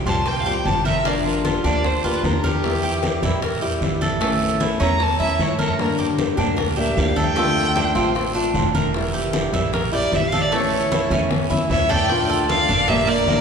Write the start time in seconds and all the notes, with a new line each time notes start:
0.05 C2 F3 G3 C4 F4 G4 A5, high bongo, high conga, low conga, short guiro
0.26 C5 G5, muted steel-string acoustic guitar stroke, high bongo, high conga, long guiro
0.40 F5
0.46 F3 G3 C4 G4, high conga
0.53 G5
0.65 G1 F3 G3 C4 G4 A5, high bongo, low bongo, high conga, short guiro
0.85 A#4 E5, high bongo, high conga, short guiro
1.04 D3 F3 A#3 D4 G4 D5, high bongo, high conga, long guiro
1.25 F4, high bongo, high conga
1.45 F4 A4, high bongo, high conga, short guiro
1.64 D2 F3 A#3 D4 G4 D5, high bongo, short guiro
1.84 C5, muted steel-string acoustic guitar stroke, high bongo, high conga, long guiro
2.04 D2 F3 A#3 D4 F4 G4 B4, high conga
2.23 E2 A#3 D4 G4 A#4, high bongo, low bongo, high conga, short guiro
2.44 G4 A#4, high bongo, high conga, short guiro
2.63 E3 G3 E4, high bongo, high conga, long guiro
2.83 G4, high bongo, high conga
3.03 high bongo, high conga, short guiro
3.22 E2 G3 E4, high bongo, high conga, low conga, short guiro
3.42 A#4, muted steel-string acoustic guitar stroke, high bongo, high conga, long guiro
3.62 G3 E4 G4, high conga
3.81 A1 E3 G3 E4, high bongo, low bongo, high conga, short guiro
4.01 A4, high bongo, high conga, short guiro
4.21 E3 A3 C#4 E4, high bongo, high conga, long guiro
4.41 high bongo, high conga
4.60 E4, high bongo, high conga, short guiro
4.80 E2 A3 C#4 E4 A#5, high bongo, short guiro
5.00 A5, muted steel-string acoustic guitar stroke, high bongo, high conga, long guiro
5.19 F2 A3 C#4 E4 E5, high conga
5.39 G2 E3 A3 C#4 E4 C#5, high bongo, low bongo, high conga, short guiro
5.59 A4 A#4, high bongo, high conga, short guiro
5.78 D3 G3 A#3 D4 G4 A#4, high bongo, high conga, long guiro
5.98 G4, high bongo, high conga
6.19 high bongo, high conga, short guiro
6.37 D2 G3 A#3 D4 G4, high bongo, high conga, low conga, short guiro
6.57 A#4, muted steel-string acoustic guitar stroke, high bongo, high conga, low conga, long guiro
6.76 G3 A#3 D4 G4 E5, high conga
6.96 D2 G3 A#3 D4 G4 F5, high bongo, low bongo, high conga, short guiro
7.16 A4 G5, high bongo, high conga, short guiro
7.36 D3 A3 C4 F4, high bongo, high conga, long guiro
7.57 high bongo, high conga
7.76 D4, high bongo, high conga, short guiro
7.95 A1 A3 C4 F4, high bongo, short guiro
8.15 muted steel-string acoustic guitar stroke, high bongo, high conga, long guiro
8.35 A3 C4 D4 F4, high conga
8.54 E1 D3 A3 C4 F4, high bongo, low bongo, high conga, short guiro
8.75 A#4, high bongo, high conga, short guiro
8.94 E3 G3 E4, high bongo, high conga, long guiro
9.14 G4, high bongo, high conga
9.33 high bongo, high conga, short guiro
9.53 A#1 G3 E4, high bongo, high conga, low conga, short guiro
9.73 A#4, muted steel-string acoustic guitar stroke, high bongo, high conga, low conga, long guiro
9.92 G3 E4 G4 D5, high conga
10.12 A1 E3 G3 E4 E5, high bongo, low bongo, high conga, short guiro
10.27 F5
10.32 A4, high bongo, high conga, short guiro
10.41 D5
10.52 E3 A3 C#4 E4 C#5, high bongo, high conga, long guiro
10.72 high bongo, high conga
10.92 E4, high bongo, high conga, short guiro
11.10 E2 A3 C#4 E4, high bongo, high conga, short guiro
11.31 muted steel-string acoustic guitar stroke, high bongo, high conga, long guiro
11.50 E2 A3 C#4 E4, high conga
11.70 D2 E3 A3 C#4 E4 C#5 E5, high bongo, low bongo, low conga, short guiro
11.89 A4 D5 G5, high bongo, low conga, short guiro
12.10 D3 A3 D4 F4, high bongo, high conga, long guiro
12.29 A4, high bongo, high conga
12.49 D3 A3 D4 F4 D5 F5, high bongo, high conga, short guiro
12.68 G1 D4, muted steel-string acoustic guitar stroke, high bongo, high conga, low conga, short guiro
12.88 D3 G3 A#3 D4 G4 A#4 E5, high bongo, high conga, low conga, long guiro
13.07 A#3 A#4 D5, high conga
13.27 A#1 G3 A#3 D4 G4, high bongo, low bongo, high conga, short guiro